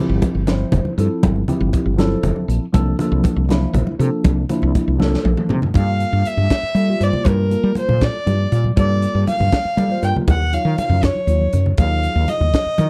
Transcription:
Already playing: tine electric piano F3 C4
0.00 tine electric piano E4 G4
0.09 fretless electric bass G1
0.22 kick, closed hi-hat, muted conga
0.35 fretless electric bass G1
0.47 tine electric piano F3 C4 E4 C5, snare, closed hi-hat, high conga
0.60 low conga
0.72 fretless electric bass F1, closed hi-hat, muted conga, low conga
0.85 muted fretless electric bass stroke, high conga
0.98 fretless electric bass G2, tine electric piano F3 C4 E4 A4, closed hi-hat
1.23 fretless electric bass G1, kick, closed hi-hat, muted conga, high conga, low conga
1.36 low conga
1.48 tine electric piano F3 C4 E4 G4, closed hi-hat, low conga
1.60 fretless electric bass G1, high conga
1.73 kick, closed hi-hat, muted conga
1.86 fretless electric bass G1
1.97 tine electric piano F3 C4 E4 A4, snare, closed hi-hat, high conga
2.11 low conga
2.23 fretless electric bass F1, closed hi-hat, muted conga, low conga
2.36 muted fretless electric bass stroke, high conga
2.48 fretless electric bass A#1, closed hi-hat
2.73 fretless electric bass C2, tine electric piano F3 A#3 D4 A4, kick, closed hi-hat, muted conga, high conga, low conga
2.86 low conga
2.99 tine electric piano F3 A#3 D4 A4, closed hi-hat, low conga
3.12 fretless electric bass C2, high conga
3.24 kick, closed hi-hat, muted conga
3.36 fretless electric bass C2
3.48 tine electric piano F3 A#3 D4 E4, snare, closed hi-hat, high conga
3.62 low conga
3.73 fretless electric bass A#1, closed hi-hat, muted conga, low conga
3.87 muted fretless electric bass stroke, high conga
3.99 fretless electric bass C3, tine electric piano F3 A#3 D4 A4, closed hi-hat
4.24 fretless electric bass C2, kick, closed hi-hat, muted conga, high conga, low conga
4.49 tine electric piano F3 A#3 D4 E4, closed hi-hat, low conga
4.62 fretless electric bass C2, high conga, low conga
4.75 kick, closed hi-hat, muted conga, low conga
4.88 fretless electric bass C2
4.98 tine electric piano F3 A#3 D4 A4, snare, high conga, low conga
5.13 snare, high conga
5.25 fretless electric bass A#1, high tom, high conga
5.37 muted fretless electric bass stroke, mid tom, high conga
5.49 fretless electric bass C3, mid tom, low conga
5.62 floor tom, low conga
5.74 fretless electric bass G2, tine electric piano G3 A#3 F4 A4, violin F5, kick, closed hi-hat, muted conga
5.99 closed hi-hat, low conga
6.13 fretless electric bass G2
6.25 violin E5, closed hi-hat, low conga
6.37 fretless electric bass G2, high conga
6.50 kick, snare, closed hi-hat, low conga
6.63 muted fretless electric bass stroke
6.75 fretless electric bass G3, tine electric piano G3 A#3 F4 A4, closed hi-hat
6.88 tine electric piano G3 A#3 F4 G4
7.00 fretless electric bass G2, tine electric piano G3 A#3 F4 C5, violin D5, closed hi-hat
7.13 high conga, low conga
7.25 fretless electric bass G2, violin A#4, kick, closed hi-hat, muted conga
7.50 tine electric piano G3 A#3 F4 A4, closed hi-hat, low conga
7.64 fretless electric bass G3
7.75 violin C5, muted fretless electric bass stroke, closed hi-hat, muted conga, low conga
7.89 fretless electric bass A#2, high conga, low conga
8.01 violin D5, kick, snare, closed hi-hat, low conga
8.26 fretless electric bass G2, tine electric piano G3 A#3 F4 G4, closed hi-hat, muted conga
8.52 fretless electric bass A#2, closed hi-hat
8.64 high conga, low conga
8.76 fretless electric bass G2, tine electric piano G3 A#3 F4 A4, violin D5, kick, closed hi-hat, muted conga
9.02 closed hi-hat, low conga
9.15 fretless electric bass G2
9.27 violin F5, closed hi-hat, muted conga, low conga
9.40 fretless electric bass G2, high conga, low conga
9.52 kick, snare, closed hi-hat, low conga
9.65 muted fretless electric bass stroke
9.77 tine electric piano G3 A#3 F4 A4, fretless electric bass G3, closed hi-hat, muted conga
9.89 tine electric piano G3 A#3 F4 C5
10.01 fretless electric bass G2, tine electric piano G3 A#3 F4 A#4, violin G5, closed hi-hat
10.16 high conga, low conga
10.28 fretless electric bass D#2, violin F#5, kick, closed hi-hat, muted conga, low conga
10.41 low conga
10.52 tine electric piano F#3 D#4 F4 C#5, violin F5, closed hi-hat, low conga
10.65 fretless electric bass D#3
10.78 violin F5, muted fretless electric bass stroke, closed hi-hat, muted conga, low conga
10.89 fretless electric bass F#2, high conga, low conga
11.03 violin C#5, kick, snare, closed hi-hat, low conga
11.15 high conga
11.27 fretless electric bass D#2, tine electric piano F#3 D#4 F4 C#5, closed hi-hat, high conga
11.41 high conga
11.53 fretless electric bass F#2, closed hi-hat, low conga
11.66 low conga
11.78 fretless electric bass D#2, tine electric piano F#3 D#4 F4 G#4, violin F5, kick, closed hi-hat, muted conga
12.03 closed hi-hat, low conga
12.15 fretless electric bass D#2
12.28 violin D#5, closed hi-hat, muted conga, low conga
12.40 fretless electric bass D#2, high conga, low conga
12.54 kick, snare, closed hi-hat, low conga
12.66 muted fretless electric bass stroke
12.78 fretless electric bass D#3, tine electric piano F#3 D#4 F4 A#4, closed hi-hat, muted conga

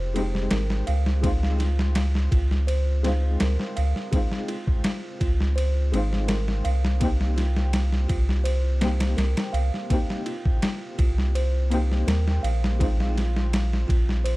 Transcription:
Already playing: sub bass F1, felt piano G#3 C4 D#4 G4
0.14 felt piano G#3 C4 D#4, ride
0.18 felt piano G4
0.35 snare
0.51 sub bass G#1, music box A#4, snare, ride
0.70 snare
0.87 sub bass C#2, music box F5, ride
1.06 snare
1.21 felt piano G#3 C4 D#4, kick, ride
1.26 felt piano F4
1.43 snare
1.59 music box F4, snare, ride
1.79 snare
1.95 snare, ride
2.15 snare
2.31 sub bass C#2, music box F4, kick, ride
2.51 snare
2.67 music box C5, ride
3.03 felt piano G#3 C4 D#4 F4, snare, ride
3.40 sub bass C#2, music box A#4, snare, ride
3.60 snare
3.76 sub bass C#2, music box F5, ride
3.96 snare
4.11 felt piano G#3 C4 D#4, kick, ride
4.16 felt piano F4
4.32 snare
4.48 music box F4, ride
4.67 kick
4.84 snare, ride
5.20 sub bass C#2, music box F4, kick, ride
5.41 snare
5.56 music box C5, ride
5.92 sub bass G#1, felt piano G#3 C4 D#4, ride
5.96 felt piano F4
6.13 snare
6.28 music box A#4, snare, ride
6.48 snare
6.64 sub bass C2, music box F5, ride
6.85 snare
7.00 felt piano A#3 C4 D#4, kick, ride
7.04 felt piano G4
7.21 snare
7.36 music box F4, snare, ride
7.57 snare
7.73 snare, ride
7.93 snare
8.08 sub bass C2, music box F4, kick, ride
8.29 snare
8.44 music box C5, ride
8.81 felt piano A#3 C4 D#4 G4, snare, ride
9.00 snare, ride
9.17 sub bass C2, music box A#4, snare, ride
9.37 snare, ride
9.53 sub bass C2, music box F5, ride
9.74 snare
9.90 felt piano A#3 C4 D#4 G4, kick, ride
10.10 snare
10.26 music box F4, ride
10.45 kick
10.62 snare, ride
10.98 sub bass C2, music box F4, kick, ride
11.18 snare
11.35 music box C5, ride
11.70 felt piano A#3 C4 D#4 G4, ride
11.92 snare
12.07 sub bass D#2, music box A#4, snare, ride
12.28 snare
12.43 sub bass A#1, music box F5, ride
12.64 snare
12.79 felt piano G#3 C4 D#4 F4, kick, ride
13.00 snare
13.15 music box F4, snare, ride
13.37 snare
13.53 snare, ride
13.73 snare
13.88 sub bass A#1, music box F4, kick, ride
14.09 snare
14.24 music box C5, ride

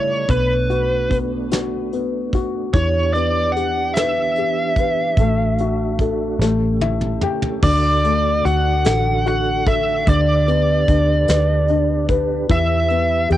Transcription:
Already playing: fingered electric bass A1, tonewheel organ C#3 G3 A3, upright piano E3 A3 E4, lead electric guitar C#5
0.28 fingered electric bass B1, upright piano B3, tonewheel organ D4, lead electric guitar B4, kick, closed hi-hat
0.70 upright piano F#4, closed hi-hat
1.10 upright piano B3, kick, closed hi-hat
1.52 upright piano F#4, snare, closed hi-hat
1.93 upright piano B3, closed hi-hat
2.33 upright piano F#4, kick, closed hi-hat
2.74 fingered electric bass E2, tonewheel organ E3 D4 G4, upright piano E3, lead electric guitar C#5, kick, closed hi-hat
3.13 upright piano B3, lead electric guitar D5, closed hi-hat
3.52 lead electric guitar F#5
3.56 upright piano G4, closed hi-hat
3.94 upright piano B4, lead electric guitar E5, snare, closed hi-hat
4.36 upright piano G4, closed hi-hat
4.76 upright piano B4, kick, closed hi-hat
5.16 fingered electric bass A1, tonewheel organ A3 F#4, upright piano A3, kick, closed hi-hat
5.58 upright piano F#4, closed hi-hat
5.99 upright piano A4, kick, closed hi-hat
6.39 fingered electric bass A1, upright piano A3, tonewheel organ C#4 G4, snare
6.81 upright piano E4 E5, high tom
7.01 mid tom
7.21 upright piano G4 G5, mid tom
7.42 floor tom
7.61 fingered electric bass D2, tonewheel organ D3 D4 F#4 A4, upright piano D3, lead electric guitar D5, kick, crash
8.04 upright piano A3, closed hi-hat
8.45 fingered electric bass D2, upright piano F#4, lead electric guitar F#5, closed hi-hat
8.85 fingered electric bass A1, upright piano A4, snare, closed hi-hat
9.26 upright piano F#4, lead electric guitar F#5, closed hi-hat
9.66 upright piano A4, lead electric guitar E5, kick, closed hi-hat
10.07 fingered electric bass D2, upright piano D3, tonewheel organ D4 G4 B4, lead electric guitar D5, kick, closed hi-hat
10.48 upright piano B3, closed hi-hat
10.88 fingered electric bass D2, upright piano D4, kick, closed hi-hat
11.28 fingered electric bass D2, upright piano B4, snare, closed hi-hat
11.68 upright piano D4, closed hi-hat
12.09 upright piano B4, kick, closed hi-hat
12.49 fingered electric bass E2, upright piano E3, tonewheel organ E3 E4 G4, lead electric guitar E5, kick, closed hi-hat
12.90 upright piano B3, closed hi-hat
13.30 fingered electric bass E2, upright piano G4, lead electric guitar G5, closed hi-hat

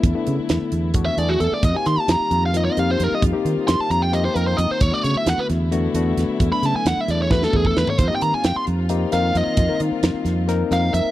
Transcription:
Already playing: string section D3 F#3 A3 B3 E4, tine electric piano A3 B3 D4 E4
0.03 fingered electric bass E2, kick, closed hi-hat
0.14 tine electric piano A3 B3 D4 E4
0.27 fingered electric bass C#3, closed hi-hat
0.39 muted fingered electric bass stroke
0.49 fingered electric bass E2, snare, closed hi-hat
0.62 muted fingered electric bass stroke
0.72 fingered electric bass E2, closed hi-hat
0.94 tine electric piano A3 B3 D4 F#4, kick, closed hi-hat
1.05 lead electric guitar E5
1.17 fingered electric bass E2, tine electric piano A3 B3 D4 G#4, lead electric guitar D5, closed hi-hat
1.29 lead electric guitar F#4
1.40 fingered electric bass E2, lead electric guitar A4, closed hi-hat
1.52 lead electric guitar D5, muted fingered electric bass stroke
1.63 fingered electric bass F2, string section D#3 G3 A#3 C4 F4, lead electric guitar D#5, kick, closed hi-hat
1.74 tine electric piano A#3 C4 D#4 G4, lead electric guitar G#5
1.86 fingered electric bass D#3, lead electric guitar C6, snare, closed hi-hat
1.97 lead electric guitar A5, muted fingered electric bass stroke
2.08 fingered electric bass F2, lead electric guitar A#5, snare, closed hi-hat
2.20 muted fingered electric bass stroke
2.31 fingered electric bass F2, closed hi-hat
2.46 lead electric guitar F5
2.54 tine electric piano A#3 C4 D#4 F4, lead electric guitar D#5, closed hi-hat
2.65 lead electric guitar C#5
2.72 lead electric guitar D#5
2.77 fingered electric bass F2, tine electric piano A#3 C4 D#4 G4, lead electric guitar F5, closed hi-hat
2.91 lead electric guitar C5
3.00 fingered electric bass F2, lead electric guitar A#4, closed hi-hat
3.12 lead electric guitar D#5, muted fingered electric bass stroke
3.22 fingered electric bass F2, kick, closed hi-hat
3.32 tine electric piano A#3 C4 D#4 G4
3.45 fingered electric bass D#3, closed hi-hat
3.57 muted fingered electric bass stroke
3.68 fingered electric bass F2, lead electric guitar C6, snare, closed hi-hat
3.79 lead electric guitar A5, muted fingered electric bass stroke
3.90 fingered electric bass F2, lead electric guitar A#5, closed hi-hat
4.02 lead electric guitar G5
4.12 tine electric piano A#3 C4 D#4 G4, lead electric guitar D#5, closed hi-hat
4.25 lead electric guitar C5
4.34 fingered electric bass F2, tine electric piano A#3 C4 D#4 A#4, lead electric guitar A#4, closed hi-hat
4.47 lead electric guitar C5
4.57 fingered electric bass F2, lead electric guitar D#5, closed hi-hat
4.71 lead electric guitar C5, muted fingered electric bass stroke
4.81 fingered electric bass E2, string section D3 F#3 A3 B3 E4, lead electric guitar C#5, kick, closed hi-hat
4.91 tine electric piano A3 B3 D4 F#4, lead electric guitar D5
5.04 fingered electric bass C#3, lead electric guitar C#5, closed hi-hat
5.15 lead electric guitar E5, muted fingered electric bass stroke
5.26 fingered electric bass E2, lead electric guitar F#5, snare, closed hi-hat
5.38 lead electric guitar B4, muted fingered electric bass stroke
5.50 fingered electric bass E2, snare, closed hi-hat
5.71 tine electric piano A3 B3 D4 F#4, closed hi-hat
5.94 fingered electric bass E2, tine electric piano A3 B3 D4 F#4, closed hi-hat
6.17 fingered electric bass E2, snare, closed hi-hat
6.28 muted fingered electric bass stroke
6.40 fingered electric bass E2, kick, closed hi-hat
6.51 tine electric piano A3 B3 D4 A4, lead electric guitar B5
6.62 fingered electric bass C#3, lead electric guitar A5, snare, closed hi-hat
6.74 lead electric guitar G#5, muted fingered electric bass stroke
6.85 fingered electric bass E2, lead electric guitar F#5, snare, closed hi-hat
6.97 lead electric guitar E5, muted fingered electric bass stroke
7.08 fingered electric bass E2, lead electric guitar D5, closed hi-hat
7.22 lead electric guitar C#5
7.30 tine electric piano A3 B3 D4 F#4, lead electric guitar B4, kick, snare
7.43 lead electric guitar A4, snare
7.53 fingered electric bass E2, tine electric piano A3 B3 D4 A4, lead electric guitar G#4, kick
7.65 lead electric guitar A4, kick
7.77 fingered electric bass E2, lead electric guitar B4, snare
7.87 lead electric guitar C#5, muted fingered electric bass stroke, floor tom
7.98 fingered electric bass F2, string section D#3 G3 A#3 C4 F4, lead electric guitar C5, kick, closed hi-hat
8.08 tine electric piano A#3 C4 D#4 G4, lead electric guitar D#5
8.16 lead electric guitar G5
8.21 fingered electric bass D#3, lead electric guitar A#5, closed hi-hat
8.34 lead electric guitar G#5, muted fingered electric bass stroke
8.44 fingered electric bass F2, lead electric guitar G5, snare, closed hi-hat
8.56 lead electric guitar C6, muted fingered electric bass stroke
8.67 fingered electric bass F2, closed hi-hat
8.89 tine electric piano A#3 C4 D#4 G4, closed hi-hat
9.12 fingered electric bass F2, tine electric piano A#3 C4 D#4 A#4, lead electric guitar F5, snare, closed hi-hat
9.35 fingered electric bass F2, lead electric guitar D#5, closed hi-hat
9.47 muted fingered electric bass stroke
9.57 fingered electric bass F2, kick, closed hi-hat
9.68 tine electric piano A#3 C4 D#4 A#4
9.80 fingered electric bass D#3, closed hi-hat
9.92 muted fingered electric bass stroke
10.03 fingered electric bass F2, snare, closed hi-hat
10.14 muted fingered electric bass stroke
10.25 fingered electric bass F2, snare, closed hi-hat
10.47 tine electric piano A#3 C4 D#4 A#4, snare, closed hi-hat
10.71 fingered electric bass F2, tine electric piano A#3 C4 D#4 A#4, lead electric guitar F5, snare, closed hi-hat
10.94 fingered electric bass F2, lead electric guitar E5, closed hi-hat
11.05 muted fingered electric bass stroke

